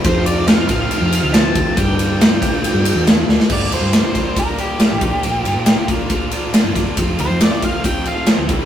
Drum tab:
CC |----------------|----------------|x---------------|----------------|
RD |x-x-x-x-x-x-x-x-|x-x-x-x-x-x-x---|--x-x-x-x-x-x-x-|x-x-x-x-x-x-x-x-|
SD |----o-------o---|----o-------o-oo|----o-------o---|----o-------o-o-|
BD |o-----o-------o-|o-----o---------|o-----o-o-----o-|------o-o-----o-|

CC |----------------|
RD |x-x-x-x-x-x-x-x-|
SD |----o-------o---|
BD |o-----o-o-----o-|